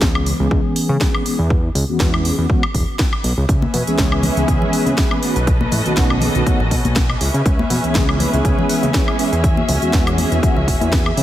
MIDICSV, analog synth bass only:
0, 0, Header, 1, 2, 480
1, 0, Start_track
1, 0, Key_signature, 4, "minor"
1, 0, Tempo, 495868
1, 1458, Time_signature, 4, 2, 24, 8
1, 10870, End_track
2, 0, Start_track
2, 0, Title_t, "Analog synth bass"
2, 0, Program_c, 0, 38
2, 14, Note_on_c, 0, 37, 90
2, 318, Note_off_c, 0, 37, 0
2, 384, Note_on_c, 0, 37, 89
2, 460, Note_off_c, 0, 37, 0
2, 495, Note_on_c, 0, 37, 89
2, 584, Note_off_c, 0, 37, 0
2, 863, Note_on_c, 0, 49, 92
2, 939, Note_off_c, 0, 49, 0
2, 1345, Note_on_c, 0, 40, 86
2, 1638, Note_off_c, 0, 40, 0
2, 1694, Note_on_c, 0, 37, 85
2, 1784, Note_off_c, 0, 37, 0
2, 1824, Note_on_c, 0, 40, 44
2, 1914, Note_off_c, 0, 40, 0
2, 1936, Note_on_c, 0, 40, 86
2, 2239, Note_off_c, 0, 40, 0
2, 2306, Note_on_c, 0, 40, 91
2, 2381, Note_off_c, 0, 40, 0
2, 2656, Note_on_c, 0, 28, 103
2, 2744, Note_off_c, 0, 28, 0
2, 3135, Note_on_c, 0, 35, 86
2, 3224, Note_off_c, 0, 35, 0
2, 3265, Note_on_c, 0, 37, 99
2, 3340, Note_off_c, 0, 37, 0
2, 3376, Note_on_c, 0, 37, 96
2, 3545, Note_off_c, 0, 37, 0
2, 3617, Note_on_c, 0, 47, 86
2, 3705, Note_off_c, 0, 47, 0
2, 3746, Note_on_c, 0, 37, 41
2, 3835, Note_off_c, 0, 37, 0
2, 3856, Note_on_c, 0, 37, 86
2, 4159, Note_off_c, 0, 37, 0
2, 4225, Note_on_c, 0, 37, 83
2, 4300, Note_off_c, 0, 37, 0
2, 4336, Note_on_c, 0, 37, 92
2, 4425, Note_off_c, 0, 37, 0
2, 4705, Note_on_c, 0, 49, 93
2, 4780, Note_off_c, 0, 49, 0
2, 5186, Note_on_c, 0, 35, 93
2, 5479, Note_off_c, 0, 35, 0
2, 5536, Note_on_c, 0, 45, 84
2, 5625, Note_off_c, 0, 45, 0
2, 5667, Note_on_c, 0, 35, 45
2, 5755, Note_off_c, 0, 35, 0
2, 5777, Note_on_c, 0, 35, 88
2, 6079, Note_off_c, 0, 35, 0
2, 6146, Note_on_c, 0, 35, 89
2, 6221, Note_off_c, 0, 35, 0
2, 6386, Note_on_c, 0, 33, 91
2, 6498, Note_on_c, 0, 47, 84
2, 6513, Note_off_c, 0, 33, 0
2, 6586, Note_off_c, 0, 47, 0
2, 6626, Note_on_c, 0, 35, 92
2, 6919, Note_off_c, 0, 35, 0
2, 6976, Note_on_c, 0, 37, 86
2, 7065, Note_off_c, 0, 37, 0
2, 7106, Note_on_c, 0, 49, 96
2, 7181, Note_off_c, 0, 49, 0
2, 7217, Note_on_c, 0, 37, 91
2, 7386, Note_off_c, 0, 37, 0
2, 7454, Note_on_c, 0, 47, 88
2, 7544, Note_off_c, 0, 47, 0
2, 7586, Note_on_c, 0, 37, 43
2, 7675, Note_off_c, 0, 37, 0
2, 7697, Note_on_c, 0, 37, 90
2, 7999, Note_off_c, 0, 37, 0
2, 8065, Note_on_c, 0, 37, 89
2, 8140, Note_off_c, 0, 37, 0
2, 8177, Note_on_c, 0, 37, 93
2, 8265, Note_off_c, 0, 37, 0
2, 8545, Note_on_c, 0, 49, 91
2, 8620, Note_off_c, 0, 49, 0
2, 9025, Note_on_c, 0, 40, 88
2, 9319, Note_off_c, 0, 40, 0
2, 9377, Note_on_c, 0, 37, 93
2, 9465, Note_off_c, 0, 37, 0
2, 9616, Note_on_c, 0, 40, 86
2, 9919, Note_off_c, 0, 40, 0
2, 9986, Note_on_c, 0, 40, 87
2, 10061, Note_off_c, 0, 40, 0
2, 10226, Note_on_c, 0, 37, 94
2, 10336, Note_on_c, 0, 28, 82
2, 10351, Note_off_c, 0, 37, 0
2, 10425, Note_off_c, 0, 28, 0
2, 10466, Note_on_c, 0, 40, 94
2, 10759, Note_off_c, 0, 40, 0
2, 10817, Note_on_c, 0, 49, 85
2, 10870, Note_off_c, 0, 49, 0
2, 10870, End_track
0, 0, End_of_file